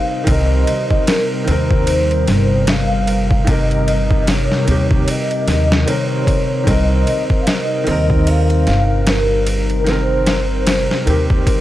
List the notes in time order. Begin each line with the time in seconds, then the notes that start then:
Already playing: C3 D#3 G3 C4 D#4 G4 A#4 D#5 F5
0.24 C2 D#3 C4 A#4 D#5, kick, ride
0.31 A#4
0.67 ride
0.91 kick
1.07 A#4, snare, ride
1.44 D#2 D#3 C4, ride
1.48 A#4 C5
1.71 kick
1.87 ride
2.11 ride
2.28 G1, snare, ride
2.67 F5, snare, ride
3.07 ride
3.31 kick
3.44 C3 D#3, kick, ride
3.49 A#4 D#5
3.71 ride
3.88 ride
4.11 kick
4.27 C#5, snare, ride
4.52 snare
4.65 D#2 C3 D#3, ride
4.71 G4
4.91 kick
5.08 D#5, ride
5.31 ride
5.47 D#2, snare, ride
5.72 snare
5.85 D#3 C4 A#4 C#5, ride
6.27 kick, ride
6.64 C2 D#3 C4 D#5, kick, ride
6.70 A#4
7.07 ride
7.30 kick
7.41 F5
7.46 D#5, snare, ride
7.84 D#2 D#3, ride
7.88 C4 A#4
8.10 kick
8.27 F5, ride
8.50 ride
8.67 G1, snare, ride
9.07 A#4, snare, ride
9.47 ride
9.70 ride
9.84 D#3 C4, snare, ride
9.89 A#4 C5
10.27 snare, ride
10.67 C5, snare, ride
10.91 snare
11.06 D#2 D#3 C4 G4 A#4, ride
11.30 kick
11.47 kick, ride